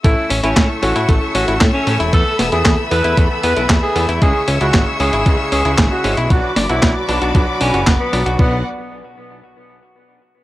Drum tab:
HH |x-oxx-oxx-oxx-ox|x-oxx-oxx-oxx-ox|x-oxx-oxx-oxx-ox|x-oxx-oxx-oxx-ox|
CP |----x-------x---|----x-------x---|----x-------x---|----x-------x---|
SD |----o-------o---|--o-o-------o---|----o-------o---|--o-o-------o---|
BD |o---o---o---o---|o---o---o---o---|o---o---o---o---|o---o---o---o---|

HH |----------------|
CP |----------------|
SD |----------------|
BD |o---------------|